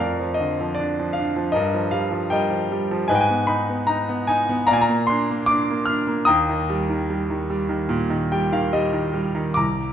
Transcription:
Already playing: A#4 D5 F5
0.00 F2
0.20 F3
0.34 D#5
0.40 D3
0.61 F3
0.75 D5
0.80 D4
0.99 F3
1.13 F5
1.19 D4
1.36 F3
1.52 G2 A#4 D#5
1.74 F3
1.91 G3 F5
2.12 F3
2.30 G3 A#4 D#5 G5
2.51 F3
2.72 G3
2.91 F3
3.08 G#2 B4 D#5 G#5
3.15 G5
3.21 G#5
3.30 B3
3.47 D#4 B5
3.69 B3
3.87 D#4 A#5
4.09 B3
4.27 D#4 G#5
4.49 B3
4.67 D5 F5 A#5
4.71 A#2 G#5
4.81 A#5
4.89 A#3
5.07 D4 C6
5.31 A#3
5.46 D6
5.51 D4
5.71 A#3
5.86 D4 F6
6.07 A#3
6.25 D#2 G5 A#5 D#6
6.50 D#3
6.70 G3
6.89 D#3
7.10 G3
7.30 D#3
7.50 G3
7.69 D#3
7.89 A#2
8.10 D#3
8.32 G3 G5
8.52 D#3 F5
8.73 G3 D#5
8.93 D#3
9.14 G3
9.35 D#3
9.54 C2 A#5 D6

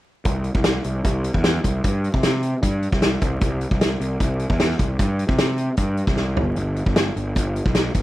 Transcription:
0.25 C2, kick, closed hi-hat
0.44 closed hi-hat
0.54 C2, kick
0.64 snare, closed hi-hat
0.84 C2, closed hi-hat
1.04 C2, kick, closed hi-hat
1.24 closed hi-hat
1.34 E2, kick
1.44 snare, closed hi-hat
1.64 C2, kick, closed hi-hat
1.84 G2, kick, closed hi-hat
2.04 closed hi-hat
2.14 C3, kick
2.23 snare, closed hi-hat
2.43 closed hi-hat
2.63 G2, kick, closed hi-hat
2.83 closed hi-hat
2.92 C2, kick, snare
3.02 snare, closed hi-hat
3.21 C2, kick, closed hi-hat
3.41 C2, kick, closed hi-hat
3.61 closed hi-hat
3.71 C2, kick
3.81 snare, closed hi-hat
4.00 C2, closed hi-hat
4.20 C2, kick, closed hi-hat
4.39 closed hi-hat
4.50 E2, kick
4.60 snare, closed hi-hat
4.70 snare
4.79 C2, kick, closed hi-hat
4.99 G2, kick, closed hi-hat
5.19 closed hi-hat
5.28 C3, kick
5.38 snare, closed hi-hat
5.58 closed hi-hat
5.77 G2, kick, closed hi-hat
5.97 closed hi-hat
6.07 C2, kick, snare
6.17 snare
6.37 G1, floor tom
6.56 G1, closed hi-hat
6.76 closed hi-hat
6.86 G1, kick
6.96 snare, closed hi-hat
7.16 G1, closed hi-hat
7.36 G1, kick, closed hi-hat
7.56 closed hi-hat
7.66 B1, kick
7.75 snare, closed hi-hat
7.94 G1, kick, closed hi-hat

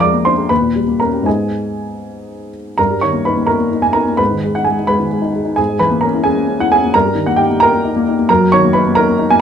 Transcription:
Already playing: F2 F3 A#4 F5 A#5
0.00 G#3 D5 D6
0.13 A#3
0.25 D4 C5 C6
0.37 G#4
0.49 D#2 B4 B5
0.62 A#2
0.75 G3
0.87 A#3
1.00 C#4 A#4 A#5
1.13 G4
1.22 G#2 G#3 B3 D#4 G#5
1.27 G#4 D#5
2.78 G2 A#4 A#5
2.90 G3
3.01 D#3 C#5 C#6
3.13 A#3
3.25 D#4 B4 B5
3.36 A#3
3.47 D#4 A#4 A#5
3.59 A#3
3.72 D#4
3.82 A#3 G#5
3.93 D#4 A#4 A#5
4.07 A#3
4.17 G#2 B4 B5
4.31 D#3
4.43 G#3
4.55 D#4 F#5
4.64 G#3 G#4 G#5
4.79 D#4
4.87 G#3 B4 B5
5.00 D#3
5.11 G#3
5.22 D#4
5.33 G#3
5.45 D#4
5.56 G#2 G#4 G#5
5.68 G#3
5.79 E3 B4 B5
5.91 A#3
6.01 C#4 A#4 A#5
6.15 E4
6.24 C#4 G#4 G#5
6.36 A#3
6.48 C#4
6.60 E4 F#5
6.72 C#4 G#4 G#5
6.84 A#3
6.94 G2 A#4 A#5
7.05 G3
7.15 D#3
7.26 A#3 F#5
7.36 D#4 G4 G5
7.50 A#3
7.60 D#4 A#4 A#5
7.73 A#3
7.85 D#4
7.96 A#3
8.08 D#4
8.19 A#3
8.29 F#2 A#4 A#5
8.41 F#3
8.52 D#3 C#5 C#6
8.64 A#3
8.73 D#4 B4 B5
8.87 A#3
8.95 D#4 A#4 A#5
9.09 A#3
9.19 D#4
9.30 A#3 G#5

